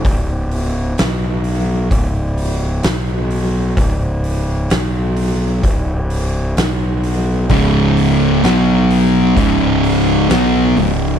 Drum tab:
HH |oooooooo|oooooooo|oooooooo|
SD |--o---o-|--o---o-|--o---o-|
BD |o---o---|o---o---|o---o---|